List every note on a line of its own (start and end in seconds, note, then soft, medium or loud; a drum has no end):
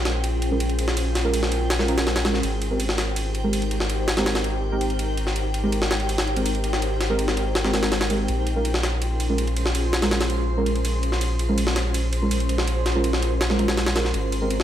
0.00 2.41 A#1 medium
0.00 2.41 C#4 medium
0.00 2.41 F4 medium
0.00 2.41 G#4 medium
0.00 2.41 C5 loud
0.00 8.29 G5 medium
0.05 snare medium
0.05 ride medium
0.24 ride medium
0.42 ride medium
0.51 0.66 G#3 medium
0.51 0.66 C#4 medium
0.51 0.66 F4 medium
0.51 0.66 A#4 medium
0.60 ride medium
0.69 ride soft
0.79 ride medium
0.88 snare soft
0.97 ride medium
1.15 snare soft
1.15 ride medium
1.24 1.40 G#3 medium
1.24 1.40 C#4 medium
1.24 1.40 F4 medium
1.24 1.40 A#4 loud
1.34 ride medium
1.43 snare soft
1.52 ride medium
1.70 snare medium
1.70 ride medium
1.79 1.86 G#3 medium
1.79 1.86 C#4 medium
1.79 1.86 F4 medium
1.79 1.86 A#4 medium
1.79 snare soft
1.88 1.96 G#3 medium
1.88 1.96 C#4 medium
1.88 1.96 F4 medium
1.88 1.96 A#4 loud
1.88 ride medium
1.97 2.13 G#3 medium
1.97 2.13 C#4 medium
1.97 2.13 A#4 medium
1.97 snare medium
1.97 ride medium
2.07 snare medium
2.07 ride medium
2.16 snare medium
2.16 ride medium
2.25 2.40 G#3 medium
2.25 2.40 C#4 medium
2.25 2.40 F4 medium
2.25 2.40 A#4 medium
2.25 snare medium
2.25 ride medium
2.34 snare soft
2.43 8.27 G#1 medium
2.43 5.34 D#4 medium
2.43 5.34 G4 medium
2.43 5.34 A#4 medium
2.43 5.34 C5 loud
2.43 ride medium
2.62 ride medium
2.71 2.80 G#3 medium
2.71 2.80 C4 medium
2.71 2.80 G4 medium
2.71 2.80 A#4 medium
2.80 ride medium
2.89 snare medium
2.98 snare medium
2.98 ride medium
3.16 ride medium
3.35 ride medium
3.44 3.59 G#3 medium
3.44 3.59 C4 medium
3.44 3.59 G4 medium
3.44 3.59 A#4 medium
3.53 ride medium
3.62 ride soft
3.71 ride medium
3.80 snare soft
3.90 ride medium
4.08 snare loud
4.08 ride medium
4.17 4.32 G#3 medium
4.17 4.32 C4 medium
4.17 4.32 G4 medium
4.17 4.32 A#4 loud
4.17 snare loud
4.17 ride medium
4.26 snare medium
4.26 ride medium
4.35 snare medium
4.35 ride medium
4.44 ride medium
4.72 4.87 G#3 medium
4.72 4.87 C4 medium
4.72 4.87 G4 medium
4.72 4.87 A#4 medium
4.81 ride medium
4.90 ride soft
4.99 ride medium
5.17 ride medium
5.27 snare soft
5.36 8.26 D#4 medium
5.36 8.26 G4 medium
5.36 8.26 A#4 medium
5.36 8.26 C5 loud
5.36 ride medium
5.54 ride medium
5.63 5.73 G#3 medium
5.63 5.73 C4 medium
5.63 5.73 G4 medium
5.63 5.73 A#4 medium
5.72 ride medium
5.82 snare medium
5.91 snare medium
5.91 ride medium
6.00 ride soft
6.09 ride medium
6.18 snare medium
6.18 ride medium
6.27 ride soft
6.36 6.52 G#3 medium
6.36 6.52 C4 medium
6.36 6.52 G4 medium
6.36 6.52 A#4 medium
6.36 ride medium
6.46 ride medium
6.55 ride soft
6.64 ride medium
6.73 snare soft
6.82 ride medium
7.01 snare soft
7.01 ride medium
7.10 7.25 G#3 medium
7.10 7.25 C4 medium
7.10 7.25 G4 medium
7.10 7.25 A#4 loud
7.19 ride medium
7.28 snare soft
7.37 ride medium
7.55 snare medium
7.55 ride medium
7.64 7.72 G#3 medium
7.64 7.72 C4 medium
7.64 7.72 G4 medium
7.64 7.72 A#4 medium
7.64 snare soft
7.74 7.81 G#3 medium
7.74 7.81 C4 medium
7.74 7.81 G4 medium
7.74 7.81 A#4 medium
7.74 snare medium
7.74 ride medium
7.83 7.98 G#3 medium
7.83 7.98 C4 medium
7.83 7.98 G4 medium
7.83 7.98 A#4 medium
7.83 snare loud
7.83 ride medium
7.92 snare loud
7.92 ride medium
8.01 snare medium
8.01 ride medium
8.10 8.26 G#3 medium
8.10 8.26 C4 medium
8.10 8.26 G4 medium
8.10 8.26 A#4 medium
8.10 ride medium
8.28 14.12 A#1 medium
8.28 11.19 C#4 medium
8.28 11.19 F4 medium
8.28 11.19 G#4 medium
8.28 11.19 C5 loud
8.28 14.63 C6 medium
8.28 ride medium
8.47 ride medium
8.56 8.66 G#3 medium
8.56 8.66 C#4 medium
8.56 8.66 F4 medium
8.56 8.66 A#4 medium
8.65 ride medium
8.74 snare medium
8.83 snare soft
8.83 ride medium
9.02 ride medium
9.20 ride medium
9.29 9.45 G#3 medium
9.29 9.45 C#4 medium
9.29 9.45 F4 medium
9.29 9.45 A#4 medium
9.38 ride medium
9.47 ride soft
9.56 ride medium
9.66 snare soft
9.75 ride medium
9.93 snare medium
9.93 ride medium
10.02 10.18 G#3 medium
10.02 10.18 C#4 medium
10.02 10.18 F4 medium
10.02 10.18 A#4 loud
10.02 snare medium
10.02 ride medium
10.11 snare medium
10.11 ride medium
10.21 snare loud
10.21 ride medium
10.30 ride medium
10.57 10.73 G#3 medium
10.57 10.73 C#4 medium
10.57 10.73 F4 medium
10.57 10.73 A#4 medium
10.66 ride medium
10.75 ride soft
10.85 ride medium
11.03 ride medium
11.12 snare soft
11.21 14.12 C#4 medium
11.21 14.12 F4 medium
11.21 14.12 G#4 medium
11.21 14.12 C5 loud
11.21 ride medium
11.39 ride medium
11.49 11.58 G#3 medium
11.49 11.58 C#4 medium
11.49 11.58 F4 medium
11.49 11.58 A#4 medium
11.58 ride medium
11.67 snare medium
11.76 snare medium
11.76 ride medium
11.94 ride medium
12.13 ride medium
12.22 12.37 G#3 medium
12.22 12.37 C#4 medium
12.22 12.37 F4 medium
12.22 12.37 A#4 medium
12.31 ride medium
12.40 ride soft
12.49 ride medium
12.58 snare soft
12.67 ride medium
12.86 snare soft
12.86 ride medium
12.95 13.10 G#3 medium
12.95 13.10 C#4 medium
12.95 13.10 F4 medium
12.95 13.10 A#4 loud
13.04 ride medium
13.13 snare soft
13.22 ride medium
13.41 snare medium
13.41 ride medium
13.50 13.57 G#3 medium
13.50 13.57 C#4 medium
13.50 13.57 F4 medium
13.50 13.57 A#4 medium
13.50 snare soft
13.59 13.67 G#3 medium
13.59 13.67 C#4 medium
13.59 13.67 F4 medium
13.59 13.67 A#4 loud
13.59 ride medium
13.68 13.84 G#3 medium
13.68 13.84 C#4 medium
13.68 13.84 F4 medium
13.68 13.84 A#4 medium
13.68 snare loud
13.68 ride medium
13.77 snare medium
13.77 ride medium
13.86 snare loud
13.86 ride medium
13.96 14.11 G#3 medium
13.96 14.11 C#4 medium
13.96 14.11 F4 medium
13.96 14.11 A#4 medium
13.96 snare loud
13.96 ride medium
14.05 snare soft
14.14 14.63 G#1 medium
14.14 14.63 D#4 medium
14.14 14.63 G4 medium
14.14 14.63 A#4 medium
14.14 14.63 C5 loud
14.14 ride medium
14.32 ride medium
14.41 14.51 G#3 medium
14.41 14.51 C4 medium
14.41 14.51 G4 medium
14.41 14.51 A#4 medium
14.50 ride medium
14.60 snare medium